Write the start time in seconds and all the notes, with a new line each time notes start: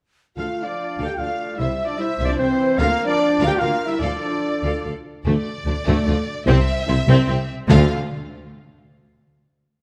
0.36 D2 D3 A3 F4 A4 F5
0.63 F3 D4 D5
0.67 D5
0.98 D2 D3 A4 F5
1.04 A#3 G4 G5
1.09 G5
1.16 D2 D3 A3 F4 F5
1.21 A4 D5 F5
1.57 C2 C3 G3 E4 C5 E5
1.85 F3 D4 D5
1.98 G3 E4 C5 E5
2.19 C2 C3 C5 E5
2.23 F3 D5
2.28 D4 D5
2.37 C2 C3 E3 C4 C5 E5
2.78 D2 D3 A#3 F4 A#4 F5
3.05 F3 D4 D5
3.20 D5
3.40 D2 D3 A#4 F5
3.46 A#3 G4 G5
3.57 D2 A#3 F4 A#4 F5
3.62 D3 F5
3.85 G3 E4 E5
4.00 D2 D3 F3 D4 A4 D5 F5
4.63 D2 D3 A4 F5
4.85 D2 D3 A4 F5
5.25 D2 D3 A3 D5
5.65 D2 D3 A3 D4
5.86 D2 D3 A3
6.06 D2 D3 A3 F4
6.46 C2 C3 C4 E5
6.87 C2 C3 C4 E4
7.07 C2 C3 C4
7.28 C2 C3 C4 G4
7.69 D2 D3 A3 F4 F5